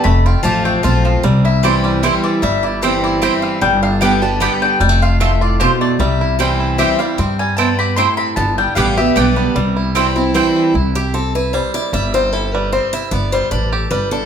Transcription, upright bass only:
\new Staff \with { instrumentName = "Upright bass" } { \clef bass \time 3/4 \key c \major \tempo 4 = 152 f,,4 a,,4 b,,4 | c,2. | g,,2. | g,,2. |
f,,2. | c,2. | g,2. | g,,4 a,,4 b,,4 |
c,2. | c,2. | g,,2. | g,,4 a,,4 g,,4 | }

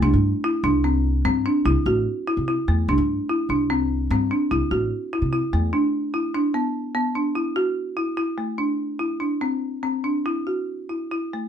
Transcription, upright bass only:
\new Staff \with { instrumentName = "Upright bass" } { \clef bass \time 7/4 \key c \lydian \tempo 4 = 147 c,16 g,8 r8. c,4. g,8 r8 c,16 r16 a,,8 r8. c8 r16 e,8 | c,16 g,8 r8. c,4. g,8 r8 c,16 r16 a,,8 r8. c8 r16 e,8 | r1. r4 | r1. r4 | }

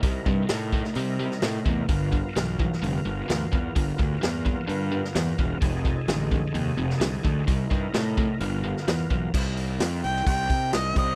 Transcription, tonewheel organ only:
\new Staff \with { instrumentName = "Tonewheel organ" } { \time 4/4 \key c \mixolydian \tempo 4 = 129 <dis' e' bes'>1 | <b f' ais'>1~ | <b f' ais'>1 | <ees' gis' a'>1 |
<dis' e' bes'>2 <b f' ais'>2 | \tuplet 3/2 { <e' f' b'>8 <dis' e' bes'>4~ } <dis' e' bes'>2. | }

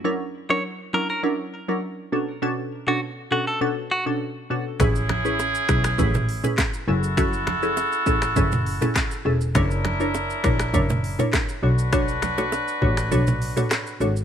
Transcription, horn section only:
\new Staff \with { instrumentName = "Horn section" } { \time 4/4 \key fis \minor \tempo 4 = 101 r1 | r1 | <cis' e' gis'>2. r8 <e' fis' a'>8~ | <e' fis' a'>2.~ <e' fis' a'>8 r8 |
<d' e' ais'>2. r8 <d' fis' b'>8~ | <d' fis' b'>2.~ <d' fis' b'>8 r8 | }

